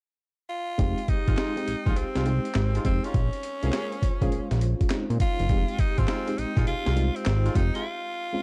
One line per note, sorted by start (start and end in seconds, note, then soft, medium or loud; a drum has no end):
0.49 1.11 F4 loud
0.78 0.95 F1 loud
0.78 1.34 G#3 medium
0.78 1.34 C4 medium
0.78 1.34 D#4 medium
0.78 1.34 G4 loud
0.78 kick loud
0.78 closed hi-hat medium
0.98 closed hi-hat soft
1.08 1.98 D#4 loud
1.08 kick medium
1.08 closed hi-hat medium
1.27 1.36 G#1 medium
1.27 1.36 G#3 medium
1.27 1.36 D#4 medium
1.27 1.37 F4 medium
1.27 kick medium
1.27 closed hi-hat medium
1.37 1.60 G#3 medium
1.37 1.60 D#4 medium
1.37 1.60 F4 medium
1.37 snare loud
1.37 clap medium
1.37 closed hi-hat medium
1.56 2.08 G#3 medium
1.56 2.09 C4 medium
1.56 2.09 D#4 medium
1.56 2.09 G4 medium
1.56 closed hi-hat soft
1.68 1.75 A#1 soft
1.68 closed hi-hat medium
1.86 1.95 A#1 medium
1.86 2.03 G#3 medium
1.86 2.03 D#4 medium
1.86 2.03 F4 medium
1.86 kick medium
1.86 closed hi-hat soft
1.96 2.05 C2 soft
1.96 2.85 C4 medium
1.96 closed hi-hat medium
2.15 2.40 C2 medium
2.15 2.32 G#3 medium
2.15 2.32 D#4 medium
2.15 2.32 F4 medium
2.15 snare medium
2.15 closed hi-hat medium
2.25 2.73 G#3 medium
2.25 2.73 C4 medium
2.25 2.73 D#4 medium
2.25 2.73 G4 medium
2.25 closed hi-hat medium
2.45 closed hi-hat medium
2.54 2.79 G#1 loud
2.54 snare loud
2.54 clap medium
2.54 closed hi-hat medium
2.74 2.91 G#3 medium
2.74 2.91 D#4 medium
2.74 2.91 F4 medium
2.74 closed hi-hat medium
2.84 3.00 F1 medium
2.84 3.14 G#3 medium
2.84 3.14 C4 medium
2.84 3.07 C4 medium
2.84 3.14 D#4 medium
2.84 3.15 G4 medium
2.84 kick medium
2.84 closed hi-hat medium
3.04 3.20 G#3 medium
3.04 4.81 C#4 medium
3.04 3.20 D#4 medium
3.04 3.20 F4 medium
3.04 closed hi-hat medium
3.14 3.30 A#1 medium
3.14 kick loud
3.14 closed hi-hat medium
3.33 closed hi-hat soft
3.43 closed hi-hat medium
3.63 3.71 C2 medium
3.63 4.01 G#3 medium
3.63 3.72 A#3 medium
3.63 3.72 C#4 medium
3.63 4.02 C#4 medium
3.63 4.02 F4 medium
3.63 3.72 G#4 medium
3.63 4.02 C5 medium
3.63 closed hi-hat medium
3.73 3.95 A#3 medium
3.73 3.96 C#4 medium
3.73 3.96 G#4 medium
3.73 snare loud
3.73 clap medium
3.73 closed hi-hat medium
3.92 closed hi-hat medium
4.02 4.10 A#1 soft
4.02 kick medium
4.02 closed hi-hat medium
4.21 4.30 A#1 medium
4.21 4.74 G#3 medium
4.21 4.38 A#3 medium
4.21 4.38 C#4 medium
4.21 4.74 C#4 medium
4.21 4.74 F4 loud
4.21 4.38 G#4 medium
4.21 4.74 C5 medium
4.21 kick medium
4.21 closed hi-hat medium
4.32 4.40 A#1 soft
4.32 closed hi-hat medium
4.51 4.75 A#1 medium
4.51 snare medium
4.51 closed hi-hat medium
4.61 closed hi-hat medium
4.81 kick medium
4.81 closed hi-hat medium
4.90 5.38 G#3 medium
4.90 5.38 C4 medium
4.90 5.38 C#4 medium
4.90 5.38 D#4 medium
4.90 snare loud
4.90 clap medium
4.90 closed hi-hat medium
5.10 5.18 A#2 medium
5.10 closed hi-hat medium
5.20 5.81 F4 loud
5.20 kick medium
5.20 closed hi-hat medium
5.39 5.48 F#1 medium
5.39 closed hi-hat medium
5.49 5.65 F1 loud
5.49 6.05 G#3 medium
5.49 6.05 C4 medium
5.49 6.05 D#4 medium
5.49 6.05 G4 medium
5.49 kick loud
5.49 closed hi-hat medium
5.68 closed hi-hat soft
5.79 6.00 D#4 loud
5.79 kick medium
5.79 closed hi-hat medium
5.98 6.06 G#1 medium
5.98 6.07 G#3 medium
5.98 6.40 C4 loud
5.98 6.07 D#4 medium
5.98 6.08 F4 medium
5.98 kick medium
5.98 closed hi-hat medium
6.08 6.31 G#3 medium
6.08 6.31 D#4 medium
6.08 6.31 F4 medium
6.08 snare loud
6.08 clap medium
6.08 closed hi-hat medium
6.27 6.79 G#3 medium
6.27 6.79 C4 medium
6.27 6.80 D#4 medium
6.27 6.80 G4 medium
6.27 closed hi-hat medium
6.38 6.46 A#1 soft
6.38 6.67 D#4 medium
6.38 closed hi-hat medium
6.57 6.65 A#1 medium
6.57 6.73 G#3 medium
6.57 6.73 D#4 medium
6.57 6.73 F4 medium
6.57 kick medium
6.57 closed hi-hat medium
6.67 6.75 C2 soft
6.67 7.17 F4 loud
6.67 closed hi-hat medium
6.86 7.10 C2 medium
6.86 7.02 G#3 medium
6.86 7.03 D#4 medium
6.86 7.03 F4 medium
6.86 snare medium
6.86 closed hi-hat medium
6.96 7.43 G#3 medium
6.96 7.43 C4 medium
6.96 7.44 D#4 medium
6.96 7.44 F4 medium
6.96 closed hi-hat medium
7.16 7.57 C4 medium
7.16 closed hi-hat medium
7.26 7.50 G#1 loud
7.26 snare loud
7.26 clap medium
7.26 closed hi-hat medium
7.45 7.61 G#3 medium
7.45 7.61 D#4 medium
7.45 7.62 F4 medium
7.45 closed hi-hat medium
7.54 7.71 F1 medium
7.54 7.84 G#3 medium
7.54 7.85 C4 medium
7.54 7.85 D#4 medium
7.54 7.76 D#4 medium
7.54 7.85 G4 medium
7.54 kick medium
7.54 closed hi-hat medium
7.75 7.85 G#3 medium
7.75 7.85 D#4 medium
7.75 8.43 F4 loud
7.75 7.85 F4 medium
7.75 closed hi-hat medium
8.33 8.43 G#3 medium
8.33 8.43 C4 medium
8.33 8.43 C#4 medium
8.33 8.43 F4 medium